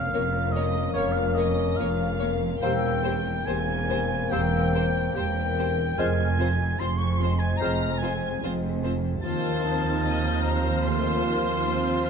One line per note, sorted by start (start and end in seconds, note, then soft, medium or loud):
0.00 2.66 F3 medium
0.00 0.95 A#3 soft
0.00 2.59 A#3 medium
0.00 2.58 C#4 medium
0.00 0.13 F4 soft
0.00 1.36 C#5 soft
0.00 0.52 F5 medium
0.00 0.54 F5 medium
0.14 0.86 F1 medium
0.14 0.86 F2 medium
0.14 0.23 A#3 medium
0.14 0.54 F4 soft
0.14 0.22 A#4 medium
0.14 0.22 C#5 soft
0.34 0.74 A#4 soft
0.53 0.64 A#3 soft
0.53 1.16 F4 soft
0.53 0.63 A#4 soft
0.53 0.63 C#5 soft
0.53 0.93 D#5 medium
0.57 0.96 D#5 medium
0.75 1.98 A#4 soft
0.93 1.68 F1 medium
0.93 1.68 F2 medium
0.93 1.26 A#3 medium
0.93 1.04 A#3 medium
0.93 1.57 A#3 medium
0.93 1.04 A#4 medium
0.93 1.14 C#5 medium
0.93 1.25 C#5 medium
0.93 1.34 F6 medium
0.98 1.06 C#5 soft
0.98 1.17 C#5 medium
1.13 1.36 F5 medium
1.17 1.78 F4 soft
1.17 1.37 F5 medium
1.35 1.44 A#3 medium
1.35 1.45 A#4 soft
1.35 2.66 C#5 soft
1.35 1.47 C#5 soft
1.35 1.78 D#5 medium
1.35 1.79 D#5 medium
1.58 3.25 A#3 soft
1.77 2.53 F1 medium
1.77 2.52 F2 medium
1.77 1.88 A#3 medium
1.77 2.20 F4 medium
1.77 1.87 A#4 medium
1.77 1.88 C#5 medium
1.77 2.34 F5 medium
1.77 2.63 F5 medium
2.00 2.41 A#4 soft
2.20 2.29 A#3 soft
2.20 2.66 F4 soft
2.20 2.28 A#4 soft
2.20 2.28 C#5 soft
2.42 3.67 A#4 soft
2.62 3.37 E1 medium
2.62 3.36 E2 medium
2.62 4.30 E3 soft
2.62 5.82 A#3 medium
2.62 2.94 A#3 medium
2.62 2.71 A#3 soft
2.62 5.82 C4 medium
2.62 2.72 G4 medium
2.62 2.70 C5 medium
2.62 2.94 C5 soft
2.62 3.47 G5 medium
2.62 3.03 E6 medium
2.84 3.46 C4 soft
3.04 3.13 A#3 soft
3.04 3.13 G4 soft
3.04 3.12 C5 soft
3.04 4.72 C5 soft
3.26 4.94 A#3 soft
3.45 4.21 E1 medium
3.45 4.21 E2 medium
3.45 3.55 A#3 medium
3.45 3.89 C4 soft
3.45 3.55 G4 medium
3.45 3.55 C5 soft
3.45 4.32 G#5 medium
3.69 4.09 A#4 soft
3.88 3.96 A#3 soft
3.88 4.52 C4 medium
3.88 3.96 G4 soft
3.88 3.98 C5 medium
4.10 5.35 A#4 soft
4.30 5.06 E1 medium
4.30 5.06 E2 medium
4.30 6.01 E3 medium
4.30 4.38 A#3 medium
4.30 4.63 A#3 medium
4.30 4.38 G4 medium
4.30 4.63 C5 medium
4.30 4.40 C5 medium
4.30 5.15 G5 medium
4.30 5.14 G5 medium
4.30 4.71 E6 medium
4.53 5.15 C4 soft
4.73 4.82 A#3 soft
4.73 4.81 G4 medium
4.73 6.38 C5 soft
4.73 4.83 C5 soft
5.14 5.88 E1 medium
5.14 5.88 E2 medium
5.14 5.22 A#3 soft
5.14 5.55 C4 medium
5.14 5.22 G4 medium
5.14 5.24 C5 medium
5.14 6.00 G5 medium
5.14 5.96 G5 medium
5.36 5.77 A#4 soft
5.56 5.66 A#3 soft
5.56 6.58 C4 soft
5.56 5.66 G4 soft
5.56 5.67 C5 medium
5.78 6.01 A#4 soft
5.98 6.70 F1 medium
5.98 6.69 F2 medium
5.98 7.16 F2 medium
5.98 9.88 F3 medium
5.98 9.20 G#3 medium
5.98 6.28 G#3 medium
5.98 6.06 C4 medium
5.98 9.19 C4 medium
5.98 6.06 F4 medium
5.98 6.06 C5 soft
5.98 6.28 C5 medium
5.98 6.79 G#5 medium
5.98 6.81 G#5 medium
5.98 6.36 F6 medium
6.18 6.79 F4 soft
6.39 6.47 C4 soft
6.39 6.47 F4 soft
6.39 6.98 C5 soft
6.39 6.48 C5 soft
6.59 7.59 C4 soft
6.79 7.51 F1 medium
6.79 7.51 F2 medium
6.79 6.88 C4 medium
6.79 6.87 F4 medium
6.79 7.19 F4 soft
6.79 6.89 C5 soft
6.79 7.00 C6 medium
6.79 6.99 C6 medium
6.98 7.39 C5 soft
6.98 7.19 C#6 medium
6.98 7.20 C#6 medium
7.18 7.28 C4 soft
7.18 7.28 F4 soft
7.18 7.80 F4 soft
7.18 7.41 C6 medium
7.18 7.40 C6 medium
7.23 7.31 C5 soft
7.39 8.00 C5 soft
7.39 7.59 G#5 medium
7.39 7.60 G#5 medium
7.57 8.33 F1 medium
7.57 8.32 F2 medium
7.57 8.21 C4 soft
7.57 7.69 C4 soft
7.57 7.69 F4 medium
7.57 7.89 C5 medium
7.57 8.00 A#5 medium
7.57 7.99 F6 medium
7.62 7.91 G#3 medium
7.62 7.72 C5 soft
7.81 8.41 F4 soft
7.98 8.62 C5 soft
7.98 8.40 G#5 medium
7.98 8.41 G#5 medium
8.02 8.10 C4 medium
8.02 8.10 F4 medium
8.02 8.12 C5 soft
8.22 9.43 C4 soft
8.42 9.14 F1 medium
8.42 9.14 F2 medium
8.42 8.52 C4 medium
8.42 8.82 F4 soft
8.42 8.51 F4 medium
8.42 8.51 C5 soft
8.63 9.02 C5 soft
8.83 8.91 C4 soft
8.83 8.92 F4 soft
8.83 9.62 F4 soft
8.83 8.93 C5 medium
9.04 10.23 C5 soft
9.21 12.10 D#2 medium
9.21 10.83 D#3 medium
9.21 12.10 F3 medium
9.21 10.00 C4 medium
9.21 12.10 C4 medium
9.21 9.61 F4 medium
9.21 12.10 C5 medium
9.21 10.00 C5 medium
9.21 10.39 A5 medium
9.21 12.10 F6 medium
9.25 12.10 F3 medium
9.45 10.03 C4 soft
9.64 10.84 D#4 medium
9.64 11.24 F4 soft
9.84 11.44 A3 soft
10.04 10.82 C4 medium
10.04 10.43 C4 soft
10.04 10.44 D#5 soft
10.24 10.63 C5 soft
10.42 11.04 C4 soft
10.42 12.10 C5 medium
10.42 10.85 A#5 medium
10.42 10.83 A#5 medium
10.65 11.83 C5 soft
10.83 12.10 D#3 medium
10.83 11.25 A3 medium
10.83 12.10 F4 medium
10.83 12.06 C6 medium
10.83 12.05 C6 medium
11.05 11.64 C4 soft
11.25 11.65 A#3 medium
11.45 12.10 A3 soft
11.65 12.04 C4 soft
11.65 12.10 C4 medium
11.85 12.10 C5 medium
12.05 12.10 C4 soft
12.05 12.10 F5 medium
12.05 12.10 F6 medium